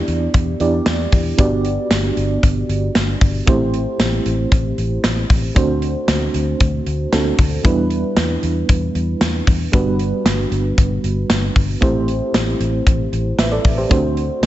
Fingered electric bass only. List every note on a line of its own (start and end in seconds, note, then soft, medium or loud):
0.08 0.27 E2 loud
0.34 0.53 E2 loud
0.60 0.79 E2 loud
0.86 1.05 E2 loud
1.13 1.31 E2 loud
1.38 1.76 G1 loud
1.91 2.09 G1 loud
2.17 2.36 G1 loud
2.43 2.62 G1 loud
2.69 2.88 G1 loud
2.95 3.14 G1 loud
3.21 3.40 G1 loud
3.47 3.85 A1 loud
4.00 4.18 A1 loud
4.26 4.44 A1 loud
4.52 4.71 A1 loud
4.78 4.97 A1 loud
5.04 5.23 A1 loud
5.30 5.49 A1 loud
5.56 5.94 D2 loud
6.08 6.27 D2 loud
6.34 6.53 D2 loud
6.60 6.79 D2 loud
6.86 7.05 D2 loud
7.12 7.31 D2 loud
7.39 7.57 D2 loud
7.65 8.02 E2 loud
8.17 8.35 E2 loud
8.43 8.62 E2 loud
8.69 8.88 E2 loud
8.95 9.14 E2 loud
9.21 9.40 E2 loud
9.47 9.66 E2 loud
9.73 10.11 G1 loud
10.25 10.44 G1 loud
10.51 10.70 G1 loud
10.78 10.97 G1 loud
11.04 11.23 G1 loud
11.30 11.48 G1 loud
11.56 11.75 G1 loud
11.82 12.20 A1 loud
12.34 12.53 A1 loud
12.60 12.79 A1 loud
12.87 13.05 A1 loud
13.12 13.31 A1 loud
13.38 13.57 A1 loud
13.65 13.84 A1 loud
13.91 14.28 D2 loud
14.42 14.46 D2 loud